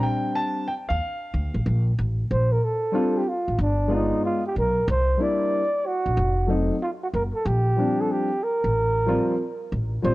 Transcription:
Already playing: grand piano G3 C4 D4
0.03 grand piano G5
0.36 grand piano A5
0.68 grand piano G5
0.89 upright bass D#2, grand piano F5
1.34 upright bass D2
1.54 upright bass A1
1.66 upright bass A#1
1.99 upright bass A1
2.31 upright bass A#1, flugelhorn C5
2.52 flugelhorn A#4
2.64 flugelhorn A4
2.92 grand piano G3 C4 D4 F4
3.18 flugelhorn G4
3.29 flugelhorn F4
3.48 upright bass A1
3.59 upright bass G1, flugelhorn D4
3.88 grand piano G#3 B3 F4 D5
3.93 flugelhorn D#4
4.25 flugelhorn F4
4.47 flugelhorn G4
4.56 upright bass B1, flugelhorn A#4
4.88 upright bass C2, flugelhorn C5
5.17 grand piano G3 A#3 D4 E4
5.22 flugelhorn D5
5.86 flugelhorn F#4
6.06 upright bass A#1
6.17 upright bass F1
6.47 grand piano F#3 A3 C4 D#4
6.82 flugelhorn F4
7.03 flugelhorn F#4
7.13 upright bass F#1, flugelhorn A#4
7.35 flugelhorn A4
7.46 upright bass A#1, flugelhorn G4
7.77 grand piano F3 G3 C4 D4
8.01 flugelhorn A4
8.12 flugelhorn G4
8.43 flugelhorn A#4
8.64 upright bass A1
9.06 grand piano F3 G3 C4 F4
9.72 upright bass A1
10.02 upright bass A#1, grand piano F3 G3 C4 F4, flugelhorn C5

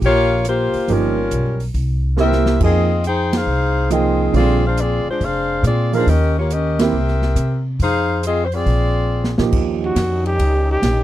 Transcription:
Already playing: grand piano F3 A#3 D#4 G4
0.01 upright bass A#1, saxophone section A#3 F4 G4 C#5, kick, open hi-hat
0.45 saxophone section A#3 F4 G4 C5, cross-stick, closed hi-hat
0.73 muted upright bass stroke, open hi-hat
0.88 upright bass G1, grand piano F3 A#3 D#4 G4, saxophone section G3 C#4 F4 A#4, kick, open hi-hat
1.31 upright bass B1, closed hi-hat
1.60 open hi-hat
1.74 upright bass C2, kick, open hi-hat
2.16 grand piano A#3 C4 E4 G4, saxophone section C4 G4 A#4 E5, snare
2.32 snare
2.46 snare
2.60 upright bass F2, grand piano F3 A#3 D#4 G#4, saxophone section C4 F4 G#4 D#5, kick, crash
3.04 saxophone section D#4 G#4 C5 G5, closed hi-hat
3.33 saxophone section D#4 G#4 C5 F5, snare, ride
3.46 upright bass C2
3.90 grand piano F3 A#3 D#4 G5, saxophone section C4 F4 G#4 D#5, cross-stick, closed hi-hat
4.33 upright bass A#1, grand piano D3 G3 C4 F4, saxophone section C4 F4 G#4 D5, kick, open hi-hat
4.66 saxophone section D4 G#4 C5 F5
4.77 saxophone section C4 F4 G#4 D5, closed hi-hat
5.06 saxophone section G#3 D4 F4 C5, muted upright bass stroke
5.20 upright bass F1, saxophone section D4 G#4 C5 F5, kick, open hi-hat
5.63 upright bass A#2, saxophone section C4 F4 G#4 D5, cross-stick, closed hi-hat
5.92 grand piano F3 A#3 D#4 A#4, saxophone section D4 G#4 C5 F5, open hi-hat
6.07 upright bass D#2, saxophone section C#4 G4 A#4 D#5, kick, open hi-hat
6.38 saxophone section A#3 F4 G4 C#5
6.50 saxophone section C#4 G4 A#4 D#5, closed hi-hat
6.79 grand piano A#3 C4 E4 G4, saxophone section C4 G4 A#4 E5, snare, ride
6.93 upright bass C2
7.08 snare
7.22 snare
7.35 upright bass C3, cross-stick, closed hi-hat
7.79 upright bass F2, saxophone section D#4 G#4 C5 F5, kick, open hi-hat
8.23 saxophone section C4 F4 G#4 D#5, closed hi-hat
8.45 saxophone section C5
8.52 saxophone section C4 F4 G#4 D5, open hi-hat
8.66 upright bass A#1, kick, open hi-hat
9.24 snare
9.38 upright bass A#2, grand piano F3 A#3 D#4 G4, snare
9.51 upright bass D#2, trombone section D#3 G3 C#4 D#4, kick, crash
9.84 trumpet F#4
9.95 upright bass F2, kick, snare, hi-hat pedal, ride
10.26 trumpet G4, ride
10.39 upright bass C#2, kick, ride
10.72 trumpet G4
10.82 upright bass A#1, kick, snare, hi-hat pedal, ride

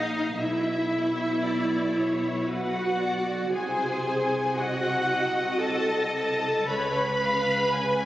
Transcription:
Already playing: double bass section A#1, cello section A#2, viola section D#4, violin section D#5 F5
0.38 double bass section B1, cello section B2, viola section E4, violin section E5
1.43 violin section D5
1.96 violin section C#5
2.47 viola section F#4, violin section B4 F#5
2.98 violin section D5
3.51 double bass section C2, cello section C3, viola section G#4, violin section C5 G#5
4.57 viola section F#4, violin section D#5 F#5
5.09 violin section D#5
5.59 viola section A4, violin section A5
6.14 viola section A4, violin section A5
6.66 double bass section C#2, cello section C#3, viola section B4, violin section C#5 B5
7.20 violin section F5
7.72 violin section G#5

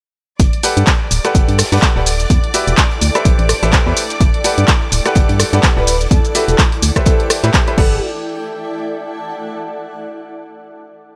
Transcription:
0.40 fm bass G1, ambient pad E4, violin section D5 D6, kick, closed hi-hat, shaker
0.53 closed hi-hat
0.59 upright piano G4 B4 D5 F#5, ambient pad A4 D5, open hi-hat
0.64 upright piano A4, closed hi-hat, shaker
0.77 fm bass G2, closed hi-hat, shaker
0.87 kick, snare, clap, closed hi-hat, shaker
1.11 fm bass D1, closed hi-hat, open hi-hat, shaker
1.25 upright piano G4 A4 B4 D5 F#5, cross-stick, closed hi-hat, shaker
1.35 fm bass G1, kick, closed hi-hat, shaker
1.48 fm bass G2, closed hi-hat
1.58 cross-stick, snare, closed hi-hat, open hi-hat, shaker
1.65 snare, closed hi-hat
1.72 fm bass G2, upright piano G4 A4 B4 D5 F#5, snare, closed hi-hat, shaker
1.77 snare, closed hi-hat
1.82 kick, snare, clap, closed hi-hat, shaker
1.96 fm bass D1, upright piano G4 A4 B4 D5 F#5, snare
2.06 open hi-hat, shaker
2.20 fm bass E1, closed hi-hat, shaker
2.30 fm bass E2, kick, closed hi-hat, shaker
2.44 closed hi-hat
2.54 upright piano F#4 G4 B4 D5 E5, closed hi-hat, open hi-hat, shaker
2.67 fm bass E1, closed hi-hat, shaker
2.77 kick, snare, clap, closed hi-hat, shaker
2.91 closed hi-hat
3.01 fm bass D2, closed hi-hat, open hi-hat, shaker
3.15 upright piano G4 A4 B4 C5 E5, cross-stick, closed hi-hat, shaker
3.25 fm bass A1, kick, closed hi-hat, shaker
3.39 fm bass A1, closed hi-hat
3.49 cross-stick, closed hi-hat, open hi-hat, shaker
3.63 fm bass A1, upright piano G4 A4 B4 C5 E5, snare, closed hi-hat, shaker
3.73 kick, snare, clap, closed hi-hat, shaker
3.87 fm bass E2, upright piano G4 A4 B4 C5 E5, snare
3.97 closed hi-hat, open hi-hat, shaker
4.10 snare, closed hi-hat, shaker
4.21 fm bass G1, kick, closed hi-hat, shaker
4.34 closed hi-hat
4.44 upright piano G4 A4 B4 D5 F#5, closed hi-hat, open hi-hat, shaker
4.58 fm bass G2, closed hi-hat, shaker
4.68 kick, snare, clap, closed hi-hat, shaker
4.92 fm bass D1, closed hi-hat, open hi-hat, shaker
5.06 upright piano G4 A4 B4 D5 F#5, cross-stick, closed hi-hat, shaker
5.15 fm bass G1, kick, closed hi-hat, shaker
5.29 fm bass G2, closed hi-hat
5.39 cross-stick, closed hi-hat, open hi-hat, shaker
5.53 fm bass G2, upright piano G4 A4 B4 D5 F#5, closed hi-hat, shaker
5.63 kick, snare, clap, closed hi-hat, shaker
5.77 fm bass D1, upright piano G4 A4 B4 D5 F#5, soft synth lead B4, snare
5.87 soft synth lead B4, open hi-hat, shaker
6.01 fm bass E1, closed hi-hat, shaker
6.11 fm bass E2, soft synth lead A4, kick, closed hi-hat, shaker
6.25 closed hi-hat, shaker
6.35 upright piano F#4 G4 B4 D5 E5, soft synth lead A4, closed hi-hat, open hi-hat, shaker
6.48 fm bass E1, soft synth lead A4, closed hi-hat, shaker
6.58 kick, snare, clap, closed hi-hat, shaker
6.72 closed hi-hat
6.82 fm bass D2, closed hi-hat, open hi-hat, shaker
6.96 upright piano G4 A4 B4 C5 E5, kick, cross-stick, closed hi-hat, shaker
7.06 soft synth lead A4, kick, closed hi-hat, shaker
7.20 closed hi-hat
7.30 cross-stick, closed hi-hat, open hi-hat, shaker
7.43 fm bass A2, upright piano G4 A4 B4 C5 E5, snare, clap, closed hi-hat, shaker
7.54 kick, snare, clap, closed hi-hat, shaker
7.67 upright piano G4 A4 B4 C5 E5, snare, closed hi-hat
7.78 fm bass G1, ambient pad E4, upright piano G4 A4 B4 D5 F#5, soft synth lead A4, kick, crash
7.86 ambient pad A4

